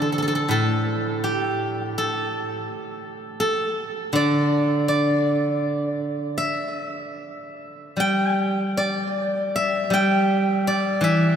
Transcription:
Already playing: D3 E3 D4 E4 G4 C5 D5
0.02 A4
0.12 A4
0.18 A4
0.22 A4
0.28 A4
0.35 A4
0.48 A2 A4
1.24 G4
1.98 A4
3.40 A4
4.13 D3 D5
4.88 D5
6.38 E5
7.97 G3 G5
8.77 D5
9.56 E5
9.90 G3 G5
10.67 D5
11.01 E3 E5

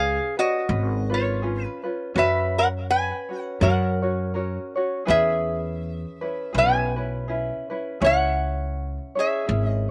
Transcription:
Already playing: C#2 C#4 F4 G#4 B4 F5
0.37 C#4 F#4 B4 D#5
0.68 G#1 C#4 G#4 B4
1.10 C#4 F4 B4
1.14 F4 C#5
1.42 C#4 F4 G#4 B4
1.64 B4
1.83 C#4 F4 B4
2.14 F#2 C#4 F#4 B4 C#5
2.19 E5
2.58 A#4 F#5
2.91 B4 G#5
3.29 C#4 F#4 C#5
3.42 F#5
3.60 F#2 C#4 F#4 A#4 C#5 F#5
4.02 C#4 F#4 C#5
4.34 C#4 F#4 A#4 C#5
4.76 C#4 F#4 C#5
5.05 E2 C#4 E4 G#4 B4
5.10 G#4 E5
6.21 C#4 E4 B4
6.53 B1 C#4 E4 G#4 B4
6.58 B4 G#5
6.96 C#4 E4 B4
7.28 C#4 E4 G#4 B4
7.70 C#4 E4 B4
8.00 C#2 C#4 E4 G#4 C#5
8.06 F#5
9.15 C#4 E4 G#4 C#5
9.20 E5
9.46 G#1 C#4 E4 G#4 C#5
9.67 D#5

